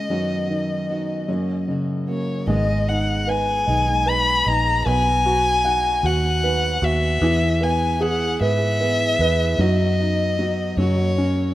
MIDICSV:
0, 0, Header, 1, 5, 480
1, 0, Start_track
1, 0, Key_signature, 5, "major"
1, 0, Tempo, 792602
1, 51, Time_signature, 6, 3, 24, 8
1, 6989, End_track
2, 0, Start_track
2, 0, Title_t, "Violin"
2, 0, Program_c, 0, 40
2, 0, Note_on_c, 0, 75, 81
2, 1015, Note_off_c, 0, 75, 0
2, 1268, Note_on_c, 0, 73, 67
2, 1489, Note_off_c, 0, 73, 0
2, 1508, Note_on_c, 0, 75, 93
2, 1747, Note_on_c, 0, 78, 83
2, 1756, Note_off_c, 0, 75, 0
2, 1992, Note_on_c, 0, 80, 93
2, 2001, Note_off_c, 0, 78, 0
2, 2477, Note_on_c, 0, 83, 104
2, 2486, Note_off_c, 0, 80, 0
2, 2712, Note_on_c, 0, 82, 101
2, 2721, Note_off_c, 0, 83, 0
2, 2946, Note_on_c, 0, 80, 103
2, 2955, Note_off_c, 0, 82, 0
2, 3669, Note_on_c, 0, 78, 96
2, 3678, Note_off_c, 0, 80, 0
2, 4141, Note_on_c, 0, 76, 103
2, 4150, Note_off_c, 0, 78, 0
2, 4620, Note_on_c, 0, 80, 89
2, 4629, Note_off_c, 0, 76, 0
2, 4858, Note_on_c, 0, 78, 95
2, 4867, Note_off_c, 0, 80, 0
2, 5093, Note_off_c, 0, 78, 0
2, 5099, Note_on_c, 0, 76, 104
2, 5819, Note_on_c, 0, 75, 94
2, 5828, Note_off_c, 0, 76, 0
2, 6533, Note_off_c, 0, 75, 0
2, 6539, Note_on_c, 0, 73, 92
2, 6989, Note_off_c, 0, 73, 0
2, 6989, End_track
3, 0, Start_track
3, 0, Title_t, "Upright piano"
3, 0, Program_c, 1, 0
3, 0, Control_c, 1, 64, 127
3, 0, Note_on_c, 1, 56, 44
3, 0, Note_on_c, 1, 61, 45
3, 59, Control_c, 1, 64, 0
3, 59, Note_on_c, 1, 42, 50
3, 64, Note_off_c, 1, 56, 0
3, 64, Note_off_c, 1, 61, 0
3, 163, Control_c, 1, 64, 127
3, 301, Note_on_c, 1, 51, 42
3, 535, Note_on_c, 1, 63, 42
3, 757, Note_off_c, 1, 42, 0
3, 765, Note_off_c, 1, 51, 0
3, 768, Note_off_c, 1, 63, 0
3, 777, Note_on_c, 1, 42, 53
3, 784, Control_c, 1, 64, 0
3, 879, Control_c, 1, 64, 127
3, 1016, Note_on_c, 1, 49, 40
3, 1260, Note_on_c, 1, 58, 42
3, 1480, Note_off_c, 1, 42, 0
3, 1486, Note_off_c, 1, 49, 0
3, 1495, Note_off_c, 1, 58, 0
3, 1498, Note_on_c, 1, 56, 61
3, 1510, Control_c, 1, 64, 0
3, 1613, Control_c, 1, 64, 127
3, 1739, Note_on_c, 1, 63, 52
3, 1981, Note_on_c, 1, 71, 52
3, 2209, Note_off_c, 1, 63, 0
3, 2218, Note_on_c, 1, 63, 54
3, 2450, Note_off_c, 1, 71, 0
3, 2459, Note_on_c, 1, 71, 50
3, 2690, Note_off_c, 1, 63, 0
3, 2699, Note_on_c, 1, 63, 55
3, 2918, Note_off_c, 1, 56, 0
3, 2925, Note_off_c, 1, 71, 0
3, 2933, Note_off_c, 1, 63, 0
3, 2941, Note_on_c, 1, 59, 66
3, 2951, Control_c, 1, 64, 0
3, 3068, Control_c, 1, 64, 127
3, 3185, Note_on_c, 1, 66, 59
3, 3420, Note_on_c, 1, 78, 58
3, 3650, Note_off_c, 1, 66, 0
3, 3659, Note_on_c, 1, 66, 54
3, 3897, Note_on_c, 1, 71, 57
3, 4125, Note_off_c, 1, 66, 0
3, 4134, Note_on_c, 1, 66, 57
3, 4347, Note_off_c, 1, 59, 0
3, 4348, Note_off_c, 1, 78, 0
3, 4359, Note_off_c, 1, 71, 0
3, 4365, Note_off_c, 1, 66, 0
3, 4371, Note_on_c, 1, 52, 70
3, 4381, Control_c, 1, 64, 0
3, 4495, Control_c, 1, 64, 127
3, 4607, Note_on_c, 1, 59, 54
3, 4848, Note_on_c, 1, 68, 62
3, 5096, Note_on_c, 1, 71, 60
3, 5324, Note_off_c, 1, 59, 0
3, 5333, Note_on_c, 1, 59, 53
3, 5566, Note_off_c, 1, 71, 0
3, 5575, Note_on_c, 1, 71, 60
3, 5781, Note_off_c, 1, 68, 0
3, 5782, Note_off_c, 1, 52, 0
3, 5795, Note_off_c, 1, 59, 0
3, 5804, Note_off_c, 1, 71, 0
3, 5809, Note_on_c, 1, 54, 65
3, 5814, Control_c, 1, 64, 0
3, 5918, Control_c, 1, 64, 127
3, 6055, Note_on_c, 1, 63, 49
3, 6282, Note_off_c, 1, 54, 0
3, 6292, Note_on_c, 1, 54, 56
3, 6517, Note_off_c, 1, 63, 0
3, 6522, Note_off_c, 1, 54, 0
3, 6531, Note_on_c, 1, 54, 60
3, 6534, Control_c, 1, 64, 0
3, 6635, Control_c, 1, 64, 127
3, 6769, Note_on_c, 1, 61, 49
3, 6989, Note_off_c, 1, 54, 0
3, 6989, Note_off_c, 1, 61, 0
3, 6989, End_track
4, 0, Start_track
4, 0, Title_t, "Steel-string acoustic guitar"
4, 0, Program_c, 2, 25
4, 0, Note_on_c, 2, 61, 35
4, 52, Note_on_c, 2, 42, 80
4, 59, Note_on_c, 2, 51, 80
4, 60, Note_on_c, 2, 54, 66
4, 61, Note_off_c, 2, 61, 0
4, 63, Note_on_c, 2, 59, 77
4, 66, Note_on_c, 2, 63, 80
4, 69, Note_on_c, 2, 66, 78
4, 287, Note_off_c, 2, 66, 0
4, 292, Note_off_c, 2, 42, 0
4, 294, Note_on_c, 2, 66, 42
4, 295, Note_off_c, 2, 51, 0
4, 296, Note_off_c, 2, 54, 0
4, 296, Note_off_c, 2, 63, 0
4, 298, Note_off_c, 2, 59, 0
4, 303, Note_on_c, 2, 63, 44
4, 310, Note_on_c, 2, 59, 37
4, 315, Note_on_c, 2, 54, 35
4, 526, Note_off_c, 2, 54, 0
4, 534, Note_off_c, 2, 59, 0
4, 534, Note_off_c, 2, 66, 0
4, 534, Note_on_c, 2, 54, 52
4, 538, Note_off_c, 2, 63, 0
4, 542, Note_on_c, 2, 59, 57
4, 547, Note_on_c, 2, 63, 55
4, 553, Note_on_c, 2, 66, 68
4, 769, Note_off_c, 2, 66, 0
4, 775, Note_off_c, 2, 54, 0
4, 777, Note_on_c, 2, 66, 59
4, 778, Note_off_c, 2, 63, 0
4, 779, Note_off_c, 2, 59, 0
4, 780, Note_on_c, 2, 61, 57
4, 785, Note_on_c, 2, 58, 57
4, 787, Note_on_c, 2, 54, 54
4, 790, Note_on_c, 2, 49, 46
4, 791, Note_on_c, 2, 42, 47
4, 1009, Note_off_c, 2, 54, 0
4, 1016, Note_on_c, 2, 54, 45
4, 1017, Note_off_c, 2, 66, 0
4, 1018, Note_off_c, 2, 58, 0
4, 1019, Note_off_c, 2, 61, 0
4, 1024, Note_off_c, 2, 49, 0
4, 1025, Note_off_c, 2, 42, 0
4, 1025, Note_on_c, 2, 58, 48
4, 1031, Note_on_c, 2, 61, 51
4, 1037, Note_on_c, 2, 66, 50
4, 1252, Note_off_c, 2, 66, 0
4, 1258, Note_off_c, 2, 54, 0
4, 1259, Note_off_c, 2, 61, 0
4, 1259, Note_on_c, 2, 66, 48
4, 1263, Note_off_c, 2, 58, 0
4, 1267, Note_on_c, 2, 61, 38
4, 1271, Note_on_c, 2, 58, 34
4, 1278, Note_on_c, 2, 54, 31
4, 1501, Note_off_c, 2, 66, 0
4, 1501, Note_on_c, 2, 44, 68
4, 1505, Note_off_c, 2, 61, 0
4, 1505, Note_on_c, 2, 51, 74
4, 1506, Note_off_c, 2, 54, 0
4, 1507, Note_off_c, 2, 58, 0
4, 1508, Note_on_c, 2, 56, 79
4, 1510, Note_on_c, 2, 59, 84
4, 1513, Note_on_c, 2, 63, 77
4, 1516, Note_on_c, 2, 68, 82
4, 1614, Note_off_c, 2, 68, 0
4, 1621, Note_on_c, 2, 68, 51
4, 1622, Note_off_c, 2, 44, 0
4, 1623, Note_off_c, 2, 63, 0
4, 1624, Note_off_c, 2, 51, 0
4, 1626, Note_off_c, 2, 56, 0
4, 1627, Note_off_c, 2, 59, 0
4, 1630, Note_on_c, 2, 63, 48
4, 1636, Note_on_c, 2, 59, 43
4, 1641, Note_on_c, 2, 56, 39
4, 1735, Note_off_c, 2, 56, 0
4, 1743, Note_off_c, 2, 68, 0
4, 1743, Note_on_c, 2, 56, 50
4, 1744, Note_off_c, 2, 59, 0
4, 1747, Note_off_c, 2, 63, 0
4, 1751, Note_on_c, 2, 59, 54
4, 1757, Note_on_c, 2, 63, 52
4, 1764, Note_on_c, 2, 68, 59
4, 1977, Note_off_c, 2, 56, 0
4, 1984, Note_on_c, 2, 56, 66
4, 1985, Note_off_c, 2, 59, 0
4, 1991, Note_off_c, 2, 63, 0
4, 1992, Note_on_c, 2, 59, 67
4, 1995, Note_off_c, 2, 68, 0
4, 1998, Note_on_c, 2, 63, 67
4, 2003, Note_on_c, 2, 68, 66
4, 2225, Note_off_c, 2, 56, 0
4, 2227, Note_on_c, 2, 44, 69
4, 2229, Note_off_c, 2, 59, 0
4, 2229, Note_on_c, 2, 51, 73
4, 2232, Note_off_c, 2, 63, 0
4, 2234, Note_off_c, 2, 68, 0
4, 2234, Note_on_c, 2, 56, 79
4, 2236, Note_on_c, 2, 59, 77
4, 2240, Note_on_c, 2, 63, 80
4, 2242, Note_on_c, 2, 68, 79
4, 2341, Note_off_c, 2, 68, 0
4, 2346, Note_off_c, 2, 44, 0
4, 2347, Note_off_c, 2, 51, 0
4, 2348, Note_on_c, 2, 68, 46
4, 2349, Note_off_c, 2, 56, 0
4, 2349, Note_off_c, 2, 63, 0
4, 2350, Note_off_c, 2, 59, 0
4, 2356, Note_on_c, 2, 63, 49
4, 2364, Note_on_c, 2, 59, 45
4, 2370, Note_on_c, 2, 56, 38
4, 2459, Note_off_c, 2, 56, 0
4, 2466, Note_off_c, 2, 68, 0
4, 2467, Note_off_c, 2, 59, 0
4, 2467, Note_on_c, 2, 56, 49
4, 2470, Note_off_c, 2, 63, 0
4, 2474, Note_on_c, 2, 59, 56
4, 2481, Note_on_c, 2, 63, 53
4, 2487, Note_on_c, 2, 68, 59
4, 2698, Note_off_c, 2, 56, 0
4, 2705, Note_off_c, 2, 59, 0
4, 2706, Note_on_c, 2, 56, 51
4, 2712, Note_off_c, 2, 63, 0
4, 2712, Note_on_c, 2, 59, 57
4, 2715, Note_off_c, 2, 68, 0
4, 2720, Note_on_c, 2, 63, 57
4, 2725, Note_on_c, 2, 68, 66
4, 2940, Note_on_c, 2, 47, 72
4, 2941, Note_off_c, 2, 59, 0
4, 2942, Note_off_c, 2, 56, 0
4, 2944, Note_on_c, 2, 54, 86
4, 2945, Note_off_c, 2, 63, 0
4, 2949, Note_on_c, 2, 59, 81
4, 2951, Note_off_c, 2, 68, 0
4, 2952, Note_on_c, 2, 63, 89
4, 2954, Note_on_c, 2, 66, 87
4, 3053, Note_off_c, 2, 66, 0
4, 3060, Note_on_c, 2, 66, 49
4, 3061, Note_off_c, 2, 47, 0
4, 3063, Note_off_c, 2, 54, 0
4, 3064, Note_off_c, 2, 63, 0
4, 3065, Note_off_c, 2, 59, 0
4, 3072, Note_on_c, 2, 63, 50
4, 3080, Note_on_c, 2, 59, 46
4, 3179, Note_on_c, 2, 54, 56
4, 3180, Note_off_c, 2, 66, 0
4, 3181, Note_off_c, 2, 59, 0
4, 3186, Note_off_c, 2, 63, 0
4, 3188, Note_on_c, 2, 59, 57
4, 3193, Note_on_c, 2, 63, 59
4, 3199, Note_on_c, 2, 66, 59
4, 3411, Note_off_c, 2, 54, 0
4, 3418, Note_on_c, 2, 54, 64
4, 3419, Note_off_c, 2, 59, 0
4, 3425, Note_off_c, 2, 63, 0
4, 3426, Note_on_c, 2, 59, 65
4, 3428, Note_off_c, 2, 66, 0
4, 3433, Note_on_c, 2, 63, 66
4, 3437, Note_on_c, 2, 66, 70
4, 3654, Note_off_c, 2, 54, 0
4, 3656, Note_on_c, 2, 47, 71
4, 3657, Note_off_c, 2, 59, 0
4, 3659, Note_off_c, 2, 63, 0
4, 3661, Note_on_c, 2, 54, 73
4, 3663, Note_off_c, 2, 66, 0
4, 3664, Note_on_c, 2, 59, 78
4, 3666, Note_on_c, 2, 63, 82
4, 3671, Note_on_c, 2, 66, 82
4, 3768, Note_off_c, 2, 66, 0
4, 3775, Note_off_c, 2, 47, 0
4, 3775, Note_on_c, 2, 66, 50
4, 3778, Note_off_c, 2, 54, 0
4, 3778, Note_off_c, 2, 63, 0
4, 3780, Note_off_c, 2, 59, 0
4, 3786, Note_on_c, 2, 63, 45
4, 3796, Note_on_c, 2, 59, 41
4, 3892, Note_off_c, 2, 59, 0
4, 3893, Note_on_c, 2, 54, 60
4, 3895, Note_off_c, 2, 66, 0
4, 3900, Note_off_c, 2, 63, 0
4, 3900, Note_on_c, 2, 59, 54
4, 3906, Note_on_c, 2, 63, 60
4, 3913, Note_on_c, 2, 66, 59
4, 4124, Note_off_c, 2, 54, 0
4, 4132, Note_on_c, 2, 54, 54
4, 4133, Note_off_c, 2, 59, 0
4, 4139, Note_off_c, 2, 63, 0
4, 4140, Note_on_c, 2, 59, 51
4, 4143, Note_off_c, 2, 66, 0
4, 4153, Note_on_c, 2, 66, 64
4, 4369, Note_off_c, 2, 54, 0
4, 4370, Note_off_c, 2, 59, 0
4, 4371, Note_on_c, 2, 52, 75
4, 4377, Note_on_c, 2, 59, 86
4, 4382, Note_off_c, 2, 66, 0
4, 4382, Note_on_c, 2, 64, 92
4, 4386, Note_on_c, 2, 68, 97
4, 4484, Note_off_c, 2, 68, 0
4, 4491, Note_off_c, 2, 52, 0
4, 4491, Note_on_c, 2, 68, 59
4, 4494, Note_off_c, 2, 59, 0
4, 4495, Note_off_c, 2, 64, 0
4, 4503, Note_on_c, 2, 64, 49
4, 4512, Note_on_c, 2, 59, 49
4, 4610, Note_on_c, 2, 52, 59
4, 4611, Note_off_c, 2, 59, 0
4, 4611, Note_off_c, 2, 68, 0
4, 4617, Note_off_c, 2, 64, 0
4, 4618, Note_on_c, 2, 59, 59
4, 4624, Note_on_c, 2, 64, 65
4, 4632, Note_on_c, 2, 68, 64
4, 4839, Note_off_c, 2, 52, 0
4, 4847, Note_on_c, 2, 52, 69
4, 4848, Note_off_c, 2, 59, 0
4, 4855, Note_off_c, 2, 64, 0
4, 4856, Note_on_c, 2, 59, 62
4, 4860, Note_off_c, 2, 68, 0
4, 4862, Note_on_c, 2, 64, 68
4, 4867, Note_on_c, 2, 68, 76
4, 5081, Note_off_c, 2, 52, 0
4, 5087, Note_off_c, 2, 59, 0
4, 5088, Note_on_c, 2, 52, 66
4, 5091, Note_off_c, 2, 64, 0
4, 5094, Note_on_c, 2, 59, 75
4, 5095, Note_off_c, 2, 68, 0
4, 5098, Note_on_c, 2, 64, 76
4, 5102, Note_on_c, 2, 68, 92
4, 5201, Note_off_c, 2, 68, 0
4, 5208, Note_off_c, 2, 52, 0
4, 5208, Note_on_c, 2, 68, 53
4, 5211, Note_off_c, 2, 59, 0
4, 5211, Note_off_c, 2, 64, 0
4, 5219, Note_on_c, 2, 64, 49
4, 5230, Note_on_c, 2, 59, 47
4, 5325, Note_on_c, 2, 52, 60
4, 5326, Note_off_c, 2, 59, 0
4, 5328, Note_off_c, 2, 68, 0
4, 5333, Note_off_c, 2, 64, 0
4, 5334, Note_on_c, 2, 59, 55
4, 5340, Note_on_c, 2, 64, 59
4, 5346, Note_on_c, 2, 68, 59
4, 5555, Note_off_c, 2, 52, 0
4, 5563, Note_on_c, 2, 52, 47
4, 5564, Note_off_c, 2, 59, 0
4, 5571, Note_off_c, 2, 64, 0
4, 5571, Note_on_c, 2, 59, 55
4, 5576, Note_off_c, 2, 68, 0
4, 5578, Note_on_c, 2, 64, 61
4, 5584, Note_on_c, 2, 68, 56
4, 5803, Note_off_c, 2, 52, 0
4, 5804, Note_off_c, 2, 59, 0
4, 5806, Note_on_c, 2, 54, 79
4, 5812, Note_off_c, 2, 64, 0
4, 5812, Note_on_c, 2, 59, 69
4, 5815, Note_off_c, 2, 68, 0
4, 5816, Note_on_c, 2, 63, 86
4, 5819, Note_on_c, 2, 66, 97
4, 5916, Note_off_c, 2, 66, 0
4, 5923, Note_on_c, 2, 66, 50
4, 5926, Note_off_c, 2, 54, 0
4, 5929, Note_off_c, 2, 59, 0
4, 5929, Note_off_c, 2, 63, 0
4, 5937, Note_on_c, 2, 63, 46
4, 5945, Note_on_c, 2, 59, 44
4, 6043, Note_on_c, 2, 54, 50
4, 6044, Note_off_c, 2, 59, 0
4, 6045, Note_off_c, 2, 66, 0
4, 6050, Note_off_c, 2, 63, 0
4, 6051, Note_on_c, 2, 59, 61
4, 6057, Note_on_c, 2, 63, 54
4, 6064, Note_on_c, 2, 66, 56
4, 6277, Note_off_c, 2, 54, 0
4, 6284, Note_on_c, 2, 54, 55
4, 6286, Note_off_c, 2, 59, 0
4, 6292, Note_off_c, 2, 63, 0
4, 6293, Note_on_c, 2, 59, 64
4, 6295, Note_off_c, 2, 66, 0
4, 6299, Note_on_c, 2, 63, 68
4, 6305, Note_on_c, 2, 66, 67
4, 6526, Note_off_c, 2, 54, 0
4, 6528, Note_on_c, 2, 42, 73
4, 6529, Note_on_c, 2, 49, 66
4, 6530, Note_off_c, 2, 59, 0
4, 6533, Note_off_c, 2, 63, 0
4, 6533, Note_off_c, 2, 66, 0
4, 6533, Note_on_c, 2, 54, 73
4, 6534, Note_on_c, 2, 58, 79
4, 6538, Note_on_c, 2, 61, 78
4, 6541, Note_on_c, 2, 66, 85
4, 6640, Note_off_c, 2, 66, 0
4, 6648, Note_off_c, 2, 42, 0
4, 6648, Note_off_c, 2, 49, 0
4, 6648, Note_off_c, 2, 61, 0
4, 6648, Note_on_c, 2, 66, 53
4, 6650, Note_off_c, 2, 54, 0
4, 6651, Note_off_c, 2, 58, 0
4, 6655, Note_on_c, 2, 61, 46
4, 6662, Note_on_c, 2, 58, 46
4, 6667, Note_on_c, 2, 54, 40
4, 6761, Note_off_c, 2, 54, 0
4, 6768, Note_off_c, 2, 66, 0
4, 6769, Note_off_c, 2, 58, 0
4, 6769, Note_on_c, 2, 54, 49
4, 6772, Note_off_c, 2, 61, 0
4, 6777, Note_on_c, 2, 58, 56
4, 6784, Note_on_c, 2, 61, 50
4, 6789, Note_on_c, 2, 66, 58
4, 6989, Note_off_c, 2, 54, 0
4, 6989, Note_off_c, 2, 58, 0
4, 6989, Note_off_c, 2, 61, 0
4, 6989, Note_off_c, 2, 66, 0
4, 6989, End_track
5, 0, Start_track
5, 0, Title_t, "Fingered electric bass"
5, 0, Program_c, 3, 33
5, 1498, Note_on_c, 3, 32, 101
5, 2199, Note_off_c, 3, 32, 0
5, 2227, Note_on_c, 3, 35, 80
5, 2681, Note_off_c, 3, 35, 0
5, 2704, Note_on_c, 3, 34, 79
5, 2929, Note_off_c, 3, 34, 0
5, 2945, Note_on_c, 3, 35, 96
5, 3634, Note_off_c, 3, 35, 0
5, 3653, Note_on_c, 3, 39, 94
5, 4107, Note_off_c, 3, 39, 0
5, 4131, Note_on_c, 3, 39, 94
5, 4357, Note_off_c, 3, 39, 0
5, 4370, Note_on_c, 3, 40, 102
5, 5063, Note_off_c, 3, 40, 0
5, 5091, Note_on_c, 3, 44, 86
5, 5544, Note_off_c, 3, 44, 0
5, 5566, Note_on_c, 3, 40, 81
5, 5792, Note_off_c, 3, 40, 0
5, 5805, Note_on_c, 3, 42, 92
5, 6502, Note_off_c, 3, 42, 0
5, 6524, Note_on_c, 3, 42, 97
5, 6983, Note_off_c, 3, 42, 0
5, 6989, End_track
0, 0, End_of_file